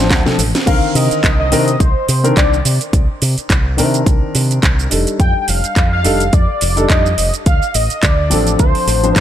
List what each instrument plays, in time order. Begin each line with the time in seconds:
Already playing: fingered electric bass A1, grand piano F3 C4
0.00 grand piano D4 C5
0.10 fingered electric bass D2, kick, snare, clap, closed hi-hat, shaker
0.25 grand piano F3 C4 D4 A4, snare, low conga, shaker
0.39 fingered electric bass A1, open hi-hat, high conga, shaker
0.55 snare, closed hi-hat, shaker
0.66 fingered electric bass C2, grand piano D3 D#3 C4 A#4, analog synth lead F5, kick, closed hi-hat, crash, shaker
0.95 fingered electric bass C3, analog synth lead D#5, open hi-hat, shaker
1.11 muted fingered electric bass stroke, closed hi-hat, shaker
1.24 fingered electric bass C2, kick, clap, closed hi-hat, shaker
1.40 analog synth lead D#5
1.51 fingered electric bass C3, grand piano D#3 C4 D4 A#4, open hi-hat, shaker
1.68 closed hi-hat, shaker
1.80 fingered electric bass C2, analog synth lead C5, kick, closed hi-hat, shaker
2.09 fingered electric bass C3, open hi-hat, shaker
2.24 grand piano D#3 C4 D4 A#4, closed hi-hat, shaker
2.36 fingered electric bass C2, grand piano D#3 C4 D4 D5, analog synth lead D5, kick, clap, closed hi-hat, shaker
2.53 shaker
2.65 fingered electric bass C3, open hi-hat, shaker
2.81 closed hi-hat, shaker
2.93 fingered electric bass C2, kick, closed hi-hat, shaker
3.22 fingered electric bass C3, open hi-hat, shaker
3.38 muted fingered electric bass stroke, closed hi-hat, shaker
3.50 fingered electric bass C2, kick, clap, closed hi-hat, shaker
3.77 fingered electric bass C3, grand piano D#3 C4 D4 A#4, open hi-hat, shaker
3.94 closed hi-hat, shaker
4.06 fingered electric bass C2, kick, closed hi-hat, shaker
4.22 muted fingered electric bass stroke
4.35 fingered electric bass C3, open hi-hat, shaker
4.51 closed hi-hat, shaker
4.63 fingered electric bass C2, kick, clap, closed hi-hat, shaker
4.79 shaker
4.90 fingered electric bass F1, grand piano G3 D4 D#4 A4, open hi-hat, shaker
5.07 closed hi-hat, shaker
5.20 fingered electric bass F2, analog synth lead G5, kick, closed hi-hat, shaker
5.42 analog synth lead G5
5.48 fingered electric bass F1, analog synth lead F5, open hi-hat, shaker
5.64 muted fingered electric bass stroke, closed hi-hat, shaker
5.76 fingered electric bass F2, kick, clap, closed hi-hat, shaker
5.93 analog synth lead F5
6.04 fingered electric bass F1, grand piano G3 D4 D#4 A4, open hi-hat, shaker
6.20 closed hi-hat, shaker
6.33 fingered electric bass F2, analog synth lead D5, kick, closed hi-hat, shaker
6.61 fingered electric bass F1, open hi-hat, shaker
6.76 grand piano G3 D4 D#4 A4, closed hi-hat, shaker
6.88 fingered electric bass F2, grand piano G3 D4 D#4 D5, analog synth lead D#5, kick, clap, closed hi-hat, shaker
7.06 shaker
7.18 fingered electric bass F1, open hi-hat, shaker
7.34 closed hi-hat, shaker
7.46 fingered electric bass D2, analog synth lead F5, kick, closed hi-hat, shaker
7.62 shaker
7.74 fingered electric bass A1, analog synth lead D#5, open hi-hat, shaker
7.90 muted fingered electric bass stroke, closed hi-hat, shaker
8.03 fingered electric bass D2, analog synth lead D5, kick, clap, closed hi-hat, shaker
8.30 fingered electric bass A1, grand piano F3 C4 D4 A4, open hi-hat, shaker
8.47 closed hi-hat, shaker
8.59 fingered electric bass D2, analog synth lead C5, kick, closed hi-hat, shaker
8.75 muted fingered electric bass stroke, open hi-hat
8.87 fingered electric bass A1, open hi-hat, shaker
9.03 grand piano F3 C4 D4 C5, closed hi-hat, shaker
9.16 fingered electric bass D2, analog synth lead A#4, kick, clap, closed hi-hat, shaker